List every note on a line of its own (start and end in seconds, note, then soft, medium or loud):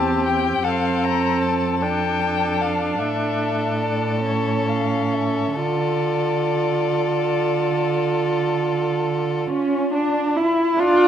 0.00 0.63 E2 medium
0.00 0.64 C4 medium
0.00 0.66 G4 medium
0.00 0.26 A5 medium
0.26 0.66 G5 medium
0.64 3.00 F2 soft
0.64 1.83 C4 medium
0.64 1.82 A4 soft
0.64 1.06 F5 medium
1.04 1.44 A#5 medium
1.42 1.84 A5 medium
1.81 4.23 D4 soft
1.81 2.98 A4 soft
1.81 2.62 G5 medium
2.61 3.01 F5 medium
2.99 5.56 A2 soft
2.99 5.53 A4 soft
2.99 3.84 E5 medium
3.82 4.24 D5 medium
4.24 5.57 C#4 soft
4.24 4.70 C#5 medium
4.69 5.15 F5 medium
5.14 5.58 E5 soft
5.56 9.47 D3 soft
5.56 10.59 F4 soft
5.56 9.47 A4 soft
5.56 9.51 D5 medium
9.50 9.90 C#4 medium
9.50 9.91 C#4 medium
9.50 9.96 C#4 medium
9.93 10.38 D4 medium
9.93 10.41 D4 medium
10.37 10.81 E4 medium
10.37 10.82 E4 medium
10.79 11.08 D4 medium
10.79 11.08 F4 medium